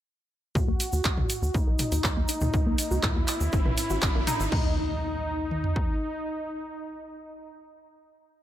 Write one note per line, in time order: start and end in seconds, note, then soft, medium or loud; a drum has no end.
0.55 0.64 D#2 loud
0.55 0.62 D#4 medium
0.55 1.56 F#4 loud
0.55 kick loud
0.55 mid tom medium
0.55 riser medium
0.55 shaker soft
0.68 0.77 D#2 medium
0.68 0.78 A#3 loud
0.80 open hi-hat loud
0.80 shaker medium
0.92 1.01 D#2 medium
0.92 0.99 F#4 medium
0.92 shaker medium
1.04 1.14 D#2 loud
1.04 kick loud
1.04 clap loud
1.04 shaker soft
1.17 1.26 D#2 medium
1.17 1.21 A#3 medium
1.17 mid tom medium
1.30 1.36 D#5 medium
1.30 open hi-hat loud
1.30 shaker medium
1.42 1.51 D#2 medium
1.42 shaker medium
1.54 1.64 D#2 loud
1.54 1.61 D#4 medium
1.54 3.05 D#4 loud
1.54 kick loud
1.54 shaker soft
1.67 1.76 A#1 medium
1.67 1.74 A#4 medium
1.79 open hi-hat loud
1.79 mid tom medium
1.79 shaker medium
1.92 2.01 D#2 medium
1.92 1.98 F#4 medium
1.92 open hi-hat medium
1.92 shaker medium
2.04 2.13 D#2 loud
2.04 kick loud
2.04 clap loud
2.04 shaker soft
2.17 2.25 D#2 medium
2.17 2.21 A#3 medium
2.28 2.36 D#4 medium
2.28 open hi-hat loud
2.28 shaker medium
2.41 2.50 D#2 medium
2.41 mid tom medium
2.41 shaker soft
2.54 2.63 C#2 loud
2.54 2.60 D#4 medium
2.54 kick loud
2.54 shaker soft
2.66 2.75 C#2 medium
2.66 2.76 A#3 loud
2.78 open hi-hat loud
2.78 shaker medium
2.91 3.00 C#2 medium
2.91 2.98 F#4 medium
2.91 shaker medium
3.03 3.12 D#2 loud
3.03 4.42 E4 loud
3.03 kick loud
3.03 clap loud
3.03 mid tom medium
3.03 shaker soft
3.16 3.24 D#2 medium
3.16 3.20 A#3 medium
3.28 3.35 D#5 medium
3.28 clap medium
3.28 open hi-hat loud
3.28 shaker medium
3.41 3.49 D#2 medium
3.41 shaker medium
3.52 3.62 G#1 loud
3.52 3.60 D#4 medium
3.52 kick loud
3.52 shaker soft
3.65 3.74 G#1 medium
3.65 3.72 B4 medium
3.65 mid tom medium
3.78 open hi-hat loud
3.78 shaker medium
3.90 3.99 G#1 medium
3.90 3.97 F#4 medium
3.90 shaker medium
4.02 4.12 G#1 loud
4.02 kick loud
4.02 clap loud
4.02 shaker soft
4.15 4.24 G#1 medium
4.15 4.19 A#3 medium
4.27 4.34 D#4 loud
4.27 open hi-hat loud
4.27 mid tom medium
4.27 shaker medium
4.40 4.49 G#1 medium
4.40 shaker medium
4.52 5.97 D#2 loud
4.52 7.54 D#4 loud
4.52 4.75 D#4 medium
4.52 kick loud
4.52 crash medium
4.52 impact medium
5.51 mid tom medium
5.64 floor tom medium
5.76 kick medium